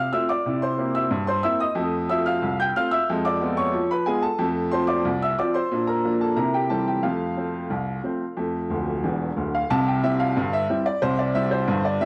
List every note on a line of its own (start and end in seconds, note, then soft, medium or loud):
0.00 0.12 F5 medium
0.00 0.12 F6 medium
0.13 0.31 A3 soft
0.13 0.31 C4 soft
0.13 0.31 F4 medium
0.13 0.29 E5 medium
0.13 0.29 E6 medium
0.29 0.60 D5 medium
0.29 0.62 D6 medium
0.46 0.74 C3 medium
0.46 0.65 E4 soft
0.62 0.93 C5 soft
0.62 0.95 C6 medium
0.78 0.96 A#3 soft
0.78 0.96 C4 soft
0.78 0.97 E4 soft
0.95 1.26 E5 medium
0.95 1.28 E6 medium
1.11 1.39 G2 medium
1.27 1.43 C5 medium
1.27 1.44 C6 medium
1.43 1.62 A#3 soft
1.43 1.62 C4 soft
1.43 1.62 E4 soft
1.43 1.60 E5 medium
1.43 1.60 E6 medium
1.60 1.76 D#5 medium
1.60 1.77 D#6 medium
1.75 2.04 F2 medium
1.75 1.95 A3 medium
2.09 2.28 A3 soft
2.09 2.28 C4 soft
2.09 2.28 F4 medium
2.09 2.26 E5 medium
2.09 2.26 E6 medium
2.26 2.57 F5 medium
2.26 2.59 F6 medium
2.42 2.70 C2 medium
2.60 2.76 G5 medium
2.60 2.76 G6 medium
2.76 2.94 A3 soft
2.76 2.95 C4 soft
2.76 2.95 F4 medium
2.76 2.92 F5 medium
2.76 2.92 F6 medium
2.91 3.23 E5 medium
2.91 3.25 E6 medium
3.09 3.37 F2 medium
3.09 3.28 G#3 medium
3.25 3.56 D5 medium
3.25 3.58 D6 medium
3.41 3.59 G#3 soft
3.41 3.59 B3 medium
3.41 3.60 F4 soft
3.57 3.88 C#5 medium
3.57 3.90 C#6 medium
3.73 4.02 F3 medium
3.91 4.07 B4 medium
3.91 4.07 B5 medium
4.06 4.25 G#3 medium
4.06 4.25 B3 soft
4.06 4.25 F4 soft
4.06 4.23 G#4 medium
4.06 4.23 G#5 medium
4.22 4.69 A4 medium
4.22 4.72 A5 medium
4.39 4.67 F2 medium
4.39 4.59 A3 medium
4.71 4.90 F3 soft
4.71 4.90 C4 medium
4.71 4.91 F4 soft
4.71 4.88 C5 medium
4.71 4.89 C6 medium
4.87 5.19 D5 medium
4.87 5.21 D6 medium
5.05 5.33 C2 medium
5.22 5.38 E5 medium
5.22 5.39 E6 medium
5.39 5.57 F3 soft
5.39 5.57 C4 soft
5.39 5.57 F4 soft
5.39 5.54 D5 medium
5.39 5.55 D6 medium
5.54 5.86 C5 medium
5.54 5.87 C6 medium
5.71 5.99 A#2 medium
5.71 5.91 D4 soft
5.87 6.19 A#4 medium
5.87 6.20 A#5 medium
6.05 6.23 F3 soft
6.05 6.23 A#3 soft
6.05 6.23 D4 soft
6.21 6.37 A4 medium
6.21 6.37 A5 medium
6.36 6.65 C3 medium
6.36 6.56 E4 soft
6.36 6.53 A#4 medium
6.36 6.53 A#5 medium
6.54 6.70 G4 soft
6.54 6.70 G5 medium
6.70 6.88 E3 soft
6.70 6.89 G3 soft
6.70 6.89 C4 soft
6.70 6.86 A4 soft
6.70 6.87 A5 medium
6.88 7.03 G4 soft
6.88 7.04 G5 medium
7.03 7.31 F2 medium
7.03 7.23 A3 soft
7.03 9.33 F4 soft
7.03 9.36 F5 medium
7.37 7.55 F3 soft
7.37 7.55 A3 soft
7.37 7.55 C4 soft
7.70 7.98 C2 medium
8.03 8.22 F3 soft
8.03 8.22 A3 soft
8.03 8.22 C4 soft
8.37 8.65 F2 medium
8.37 8.56 A3 soft
8.70 8.95 D1 medium
8.70 8.95 D2 medium
9.04 9.28 E1 medium
9.04 9.28 E2 medium
9.36 9.61 D1 medium
9.36 9.61 D2 medium
9.55 9.70 F5 medium
9.70 9.98 C2 medium
9.70 9.98 C3 loud
9.70 9.87 A5 loud
9.88 10.04 G5 medium
10.04 10.22 G3 medium
10.04 10.22 C4 medium
10.04 10.22 E4 medium
10.04 10.20 E5 medium
10.20 10.52 F5 medium
10.37 10.64 G1 medium
10.37 10.64 G2 medium
10.53 10.86 E5 medium
10.70 10.88 G3 soft
10.70 10.88 C4 medium
10.70 10.88 E4 medium
10.86 11.02 D5 medium
11.02 11.30 C2 medium
11.02 11.30 C3 medium
11.02 11.18 C5 loud
11.19 11.35 D5 medium
11.35 11.53 G3 medium
11.35 11.53 C4 medium
11.35 11.53 E4 medium
11.35 11.51 E5 medium
11.51 11.84 C5 medium
11.68 11.95 G1 medium
11.68 11.96 G2 medium
11.85 12.01 D5 medium
12.01 12.05 G3 medium
12.01 12.05 C4 medium
12.01 12.05 E4 medium
12.01 12.05 E5 medium